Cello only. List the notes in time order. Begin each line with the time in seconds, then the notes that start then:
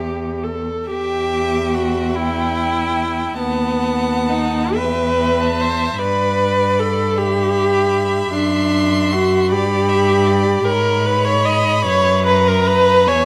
Already playing: E2
0.90 E2
3.39 D#2
4.76 E2
6.00 G2
8.33 F#2
9.51 G2
10.65 G#2
11.83 F#2
13.07 E2